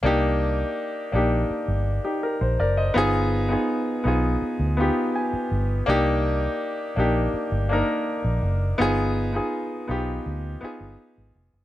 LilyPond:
<<
  \new Staff \with { instrumentName = "Grand piano" } { \time 4/4 \key c \minor \tempo 4 = 82 << { r2 r8. <ees' g'>16 <g' bes'>16 c''16 <bes' d''>16 <c'' ees''>16~ | <c'' ees''>16 r2 r8. aes''4 | r1 | r1 | } \\ { <bes d' ees' g'>4 r8 <bes d' ees' g'>8. r4. r16 | <b ees' f' aes'>8 r16 <b ees' f' aes'>8 r16 <b ees' f' aes'>8. r16 <b ees' f' g'>4 r8 | <bes d' ees' g'>4 r8 <bes d' ees' g'>8. r16 <bes d' ees' bes'>4 r8 | <b ees' f' aes'>8 r16 <b ees' f' aes'>8 r16 <b ees' f' g'>8. r16 <b ees' f' aes'>4 r8 | } >> }
  \new Staff \with { instrumentName = "Fingered electric bass" } { \clef bass \time 4/4 \key c \minor c,4 r8 bes,,8 r16 g,,8 r8 bes,,16 fis,,8 | g,,4 r8 b,,8 r16 d,8 r8. g,,8 | c,4 r8 bes,,8 r16 g,,8 r8 bes,,16 fis,,8 | g,,4 r8 b,,8 d,8 r16 g,,16 r16 aes,,16 f,,16 fis,,16 | }
>>